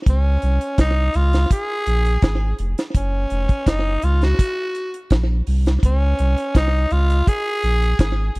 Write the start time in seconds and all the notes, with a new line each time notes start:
0.06 C#2 C#4, kick, closed hi-hat
0.42 C2, closed hi-hat
0.61 closed hi-hat
0.78 C2 D#4, kick, snare, closed hi-hat
1.14 C#2 F4, closed hi-hat
1.33 snare, closed hi-hat
1.51 G#4, kick, closed hi-hat
1.86 A#1, closed hi-hat
2.06 closed hi-hat
2.22 G#1, kick, snare, closed hi-hat
2.59 F1, closed hi-hat
2.78 snare, closed hi-hat
2.95 F#1 C#4, kick, closed hi-hat
3.30 F1, closed hi-hat
3.49 kick, closed hi-hat
3.66 F#1 D#4, kick, snare, closed hi-hat
4.02 C#2 F4, closed hi-hat
4.22 F#4, snare, closed hi-hat
4.39 kick, closed hi-hat
4.75 closed hi-hat
4.94 closed hi-hat
5.10 A#1, kick, snare, closed hi-hat
5.47 C2, open hi-hat
5.66 snare, closed hi-hat
5.83 C#2 C#4, kick, closed hi-hat
6.19 C2, closed hi-hat
6.38 closed hi-hat
6.55 C2 D#4, kick, snare, closed hi-hat
6.90 C#2 F4, closed hi-hat
7.10 closed hi-hat
7.27 G#4, kick, closed hi-hat
7.63 A#1, closed hi-hat
7.82 closed hi-hat
7.99 G#1, kick, snare, closed hi-hat
8.35 F1, closed hi-hat